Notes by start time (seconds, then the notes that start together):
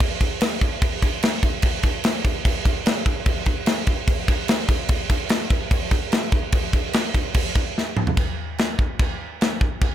0.00 kick, crash
0.21 kick, crash
0.41 snare, crash
0.61 kick, crash
0.82 kick, crash
1.02 kick, crash
1.23 snare, crash
1.43 kick, crash
1.62 kick, crash
1.83 kick, crash
2.04 snare, crash
2.24 kick, crash
2.45 kick, crash
2.65 kick, crash
2.86 snare, crash
3.06 kick, crash
3.26 kick, crash
3.46 kick, crash
3.66 snare, crash
3.87 kick, crash
4.07 kick, crash
4.28 kick, crash
4.48 snare, crash
4.68 kick, crash
4.89 kick, crash
5.10 kick, crash
5.29 snare, crash
5.50 kick, crash
5.71 kick, crash
5.91 kick, crash
6.12 snare, crash
6.32 kick, crash
6.52 kick, crash
6.73 kick, crash
6.93 snare, crash
7.14 kick, crash
7.34 kick, crash
7.55 kick, crash
7.78 snare
7.97 mid tom
8.07 floor tom
8.17 kick, china
8.58 snare, china
8.79 kick
8.99 kick, china
9.41 snare, china
9.61 kick
9.81 kick, china